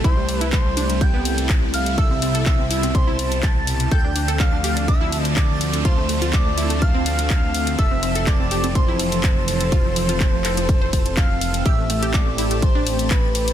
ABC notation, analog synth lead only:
X:1
M:4/4
L:1/8
Q:1/4=124
K:C
V:1 name="Analog synth lead"
c2 c2 g2 z f | e2 e2 c2 a2 | g2 f2 e2 d2 | c2 d2 f2 f2 |
e2 d2 c4- | c6 f2 | e2 d2 c2 B2 |]